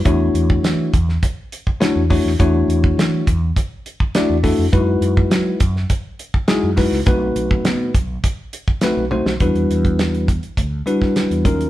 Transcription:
<<
  \new Staff \with { instrumentName = "Tine electric piano" } { \time 4/4 \key b \minor \tempo 4 = 103 <a d' e' fis' cis''>4. r4. <a d' e' fis' cis''>8 <a d' e' fis' cis''>8 | <a d' e' fis' cis''>4. r4. <a d' e' fis' d''>8 <a d' e' fis' a'>8 | <gis dis' e' fis' b'>4. r4. <gis dis' e' fis' gis'>8 <gis dis' e' fis' b'>8 | <a c' dis' fis' b'>4. r4. <a c' dis' fis' b'>8 <a c' dis' fis' c''>8 |
\key e \minor <g d' e' fis' b'>4. r4 <g d' e' fis' b'>4 <fis cis' dis' eis' ais'>8 | }
  \new Staff \with { instrumentName = "Fretless electric bass" } { \clef bass \time 4/4 \key b \minor e,8 e,8 e8 e,8 r4 r16 e,8 e,16 | e,8 e,8 e8 e,8 r4 r16 e,8 f,16 | fis,8 fis,8 fis8 fis,8 r4 r16 fis,8 cis,16 | b,,8 b,,8 b,8 b,,8 r4 r16 b,,8 b,,16 |
\key e \minor e,16 e,16 e,4. d,8 r8. e,16 dis,8 | }
  \new DrumStaff \with { instrumentName = "Drums" } \drummode { \time 4/4 <hh bd>8 hh16 bd16 <hh sn>8 <hh bd>16 sn16 <hh bd>8 hh16 bd16 <hh sn>8 <hho bd>16 sn16 | <hh bd>8 hh16 bd16 <hh sn>8 <hh bd>8 <hh bd>8 hh16 bd16 <hh sn>8 <hho bd>8 | <hh bd>8 hh16 bd16 <hh sn>8 <hh bd>16 sn16 <hh bd>8 hh16 bd16 <hh sn>8 <hho bd sn>16 sn16 | <hh bd>8 hh16 bd16 <hh sn>8 <hh bd>8 <hh bd>8 hh16 bd16 <hh sn>8 tommh16 sn16 |
<hh bd>16 hh16 hh16 <hh bd>16 <hh sn>16 hh16 <hh bd>16 hh16 <hh bd>8 hh16 <bd sn>16 <hh sn>16 hh16 <hh bd>16 hh16 | }
>>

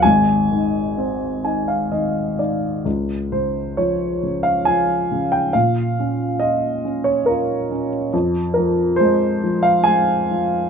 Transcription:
<<
  \new Staff \with { instrumentName = "Grand piano" } { \time 3/4 \key aes \lydian \tempo 4 = 68 << { aes''2~ aes''8 r8 | \key des \major r8 c''8 des''8. f''16 aes''8. g''16 | f''4 ees''8. des''16 bes'8. r16 | r8 bes'8 c''8. f''16 aes''4 | } \\ { r4. aes''16 f''16 ees''8 d''8 | r2. | r2. | r2. | } >> }
  \new Staff \with { instrumentName = "Grand piano" } { \clef bass \time 3/4 \key aes \lydian <aes,, aes,>8 ees8 c'8 ees'8 ees8 ees'8 | \key des \major des,8 des8 f8 des8 f8 des8 | bes,8 des'8 f'8 des'8 f'8 des'8 | f,8 f8 aes8 f8 aes8 f8 | }
>>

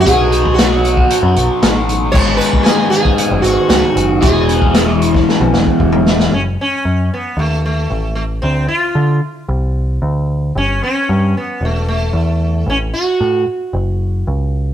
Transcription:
<<
  \new Staff \with { instrumentName = "Sitar" } { \time 4/4 \key fis \dorian \tempo 4 = 114 gis'4 fis'4. r4. | cis''8 b'8 gis'8 gis'4 fis'8 fis'4 | gis'2 r2 | cis'8 cis'4 b8 a8 a4 a8 |
c'8 f'4 r2 r8 | cis'8 cis'4 b8 a8 a4. | cis'8 fis'4 r2 r8 | }
  \new Staff \with { instrumentName = "Overdriven electric guitar" } { \time 4/4 \key fis \dorian <b, fis b dis' fis'>1 | <gis, dis gis b dis' gis'>1 | <e, e gis b e' gis'>1 | r1 |
r1 | r1 | r1 | }
  \new Staff \with { instrumentName = "Picked electric bass" } { \clef bass \time 4/4 \key fis \dorian b,,2 r16 fis,16 b,,16 r16 a,,4 | gis,,8 r4. r16 fis,,16 gis,,16 r16 cis,16 r16 fis,,8 | e,,2 r16 b,,16 e,,16 r16 e,,4 | fis,,8 r8 fis,8 r8 dis,4 a,,4 |
d,8 r8 d8 r8 c,4 d,4 | g,,8 r8 g,8 r8 e,,4 e,4 | a,,8 r8 a,8 r8 fis,,4 cis,4 | }
  \new DrumStaff \with { instrumentName = "Drums" } \drummode { \time 4/4 <hh bd>8 hh16 bd16 <hh sn>8 hh16 bd16 hh8 hh8 <hh sn>8 hh8 | <cymc bd>8 hh16 bd16 <hh sn>8 hh16 bd16 hh8 hh8 <hh sn>8 hh8 | <hh bd>8 hh16 bd16 <hh sn>8 hh16 <bd sn>16 sn16 tommh16 sn16 bd16 bd16 toml16 sn16 sn16 | r4 r4 r4 r4 |
r4 r4 r4 r4 | r4 r4 r4 r4 | r4 r4 r4 r4 | }
>>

